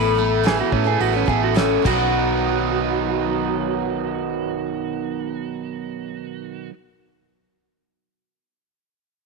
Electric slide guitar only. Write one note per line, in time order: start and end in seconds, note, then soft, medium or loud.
0.47 0.59 G#4 medium
0.61 0.73 F#4 medium
0.73 0.86 C#4 medium
0.87 1.00 G#4 medium
1.01 1.14 F#4 medium
1.16 1.29 C#4 medium
1.28 1.41 G#4 medium
1.44 1.57 F#4 medium
1.57 1.84 C#4 medium
1.87 6.70 F#4 medium